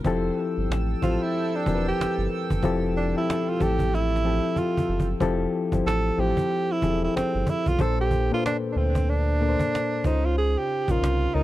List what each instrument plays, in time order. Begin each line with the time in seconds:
0.04 analog synth bass F1, reed electric piano F3 C4 E4 G4 A4, analog synth pad A4 G5 E6, cajon bass
0.37 cajon slap
0.39 cajon slap
0.57 analog synth bass G1
0.70 analog synth bass A1, cajon slap
1.02 analog synth bass A1, reed electric piano F3 C4 E4 G4 C5, tenor saxophone F4, cajon bass
1.23 tenor saxophone E4
1.34 cajon slap
1.55 tenor saxophone D4
1.66 analog synth bass E1, reed electric piano F3 C4 E4 G4 A#4, cajon bass
1.75 reed electric piano B4
1.88 tenor saxophone G4, cajon slap
1.99 analog synth bass G1, cajon slap
2.18 analog synth bass G1
2.31 cajon slap
2.50 analog synth bass F#1, cajon bass
2.63 analog synth bass F1, reed electric piano F3 C4 E4 G4 A4, cajon bass
2.96 tenor saxophone D4, cajon slap
2.98 cajon slap
3.15 reed electric piano F3 C4 E4 G4 A4, tenor saxophone E4, cajon slap
3.30 cajon slap
3.49 tenor saxophone F4
3.60 analog synth bass A1, reed electric piano F3 C4 E4 G4 A4, tenor saxophone G4, cajon bass
3.79 cajon bass
3.92 tenor saxophone E4, cajon slap
3.95 cajon slap
4.16 cajon slap
4.25 reed electric piano F3 C4 G4 A4 E5
4.56 tenor saxophone F4, cajon bass, cajon slap
4.77 cajon bass
4.89 analog synth bass F#1
5.00 cajon bass
5.20 analog synth bass F1, reed electric piano F3 C4 E4 G4 A4, cajon bass
5.53 cajon slap
5.72 analog synth bass G1, reed electric piano F3 C4 E4 G4 C5, cajon bass, cajon slap
5.86 analog synth bass A1, tenor saxophone A4, cajon slap
6.18 analog synth bass A1, reed electric piano F3 C4 E4 G4 C5, tenor saxophone G4, cajon slap
6.37 cajon bass
6.72 tenor saxophone E4
6.82 analog synth bass E1, reed electric piano F3 C4 E4 G4 G#4, cajon bass
6.90 reed electric piano A4
7.04 tenor saxophone E4
7.15 analog synth bass G1, tenor saxophone C4, cajon slap
7.35 analog synth bass G1
7.47 tenor saxophone E4, cajon bass
7.66 analog synth bass B1, tenor saxophone F4, cajon bass
7.79 analog synth bass A#1, reed electric piano A#2 A#3 D4 A4 C5, tenor saxophone A4, cajon bass
8.01 tenor saxophone G4
8.11 cajon bass
8.32 reed electric piano A#2 A#3 D4 A4 B4, tenor saxophone F4, cajon slap
8.40 reed electric piano C5
8.46 tenor saxophone D4, cajon slap
8.72 analog synth bass D2, tenor saxophone D4, cajon slap
8.77 tenor saxophone C4
8.95 cajon bass
9.08 tenor saxophone D4, cajon slap
9.40 reed electric piano A#2 A#3 D4 A4 A#4, cajon slap
9.49 reed electric piano C5
9.59 cajon bass
9.75 cajon slap
10.04 analog synth bass C#2, reed electric piano C#3 C#4 D#4 F4 C5, tenor saxophone D#4, cajon bass
10.26 tenor saxophone F4
10.37 tenor saxophone G#4, cajon slap
10.58 tenor saxophone G4
10.69 cajon slap
10.88 analog synth bass A#1, reed electric piano C#3 C#4 D#4 F4 A#4, tenor saxophone F4, cajon bass, cajon slap
11.02 analog synth bass C2, cajon slap
11.34 analog synth bass C#2, reed electric piano C#3 C#4 D#4 F4 A#4, tenor saxophone D#4, cajon slap